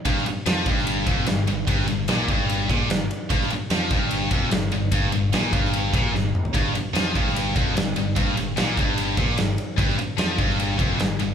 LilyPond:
<<
  \new Staff \with { instrumentName = "Distorted electric guitar" } { \clef bass \time 4/4 \key g \minor \tempo 4 = 148 g,8 r8 f8 g,4 f,8 g,8 g,8 | g,8 g,8 bes,8 g,4 bes,8 g,8 r8 | g,8 r8 f8 g,4 f,8 g,8 g,8 | g,8 g,8 bes,8 g,4 bes,8 g,8 r8 |
g,8 r8 f8 g,4 f,8 g,8 g,8 | g,8 g,8 bes,8 g,4 bes,8 g,8 r8 | g,8 r8 f8 g,4 f,8 g,8 g,8 | }
  \new Staff \with { instrumentName = "Distorted electric guitar" } { \clef bass \time 4/4 \key g \minor g,8 r8 f8 g,4 f,8 g,8 g,8 | g,8 g,8 bes,8 g,4 bes,8 g,8 r8 | g,8 r8 f8 g,4 f,8 g,8 g,8 | g,8 g,8 bes,8 g,4 bes,8 g,8 r8 |
g,8 r8 f8 g,4 f,8 g,8 g,8 | g,8 g,8 bes,8 g,4 bes,8 g,8 r8 | g,8 r8 f8 g,4 f,8 g,8 g,8 | }
  \new Staff \with { instrumentName = "Picked electric bass" } { \clef bass \time 4/4 \key g \minor g,,8 r8 f,8 g,,4 f,,8 g,,8 g,,8 | g,,8 g,,8 bes,,8 g,,4 bes,,8 g,,8 r8 | g,,8 r8 f,8 g,,4 f,,8 g,,8 g,,8 | g,,8 g,,8 bes,,8 g,,4 bes,,8 g,,8 r8 |
g,,8 r8 f,8 g,,4 f,,8 g,,8 g,,8 | g,,8 g,,8 bes,,8 g,,4 bes,,8 g,,8 r8 | g,,8 r8 f,8 g,,4 f,,8 g,,8 g,,8 | }
  \new DrumStaff \with { instrumentName = "Drums" } \drummode { \time 4/4 <bd cymr>16 sn16 cymr8 <cymr sn>8 <bd cymr>16 sn16 cymr8 <bd cymr>8 <cymr sn>8 cymr8 | <bd cymr>16 sn16 cymr8 <cymr sn>8 <bd cymr>8 cymr8 <bd cymr>8 <cymr sn>8 cymr8 | <bd cymr>16 sn16 cymr8 <cymr sn>8 <bd cymr>8 cymr8 <bd cymr>8 <cymr sn>8 cymr8 | <bd cymr>8 cymr8 <cymr sn>8 <bd cymr>16 sn16 cymr8 <bd cymr>8 sn8 toml16 tomfh16 |
<bd cymr>8 cymr8 <cymr sn>8 <bd cymr>16 sn16 cymr8 <bd cymr>8 <cymr sn>8 cymr8 | <bd cymr>8 cymr8 <cymr sn>8 <bd cymr>8 cymr8 <bd cymr>8 <cymr sn>8 cymr8 | <bd cymr>16 sn16 cymr8 <cymr sn>8 <bd cymr>16 sn16 cymr8 <bd cymr>8 <cymr sn>8 cymr8 | }
>>